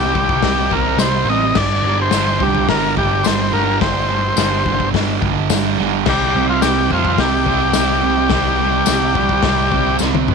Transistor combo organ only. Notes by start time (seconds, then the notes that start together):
Already playing: G4
0.72 A#4
0.99 C5
1.29 D#5
1.57 D5
2.02 C5
2.42 G4
2.69 A#4
2.98 G4
3.23 C5
3.53 A#4
3.81 C5
6.09 G4
6.50 F4
6.62 G4
6.93 F4
7.20 G4